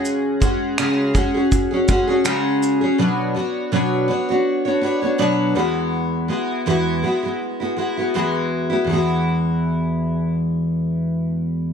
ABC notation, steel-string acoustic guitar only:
X:1
M:4/4
L:1/16
Q:"Swing 16ths" 1/4=82
K:Emix
V:1 name="Steel-string acoustic guitar"
[C,G,CFG]2 [G,CFG]2 [C,G,CFG]2 [G,CFG] [CFG]2 [CFG] [G,CFG] [CFG] [C,G,CFG]3 [CFG] | [B,,F,B,DFc]2 [B,DFc]2 [B,,F,B,DFc]2 [B,DFc] [B,DFc]2 [B,DFc] [B,DFc] [B,DFc] [B,,F,B,DFc]2 [E,,E,G,B,EF]2- | [E,,E,G,B,EF]2 [G,B,EF]2 [E,,E,G,B,EF]2 [G,B,EF] [G,B,EF]2 [G,B,EF] [G,B,EF] [G,B,EF] [E,,E,G,B,EF]3 [G,B,EF] | [E,,E,G,B,EF]16 |]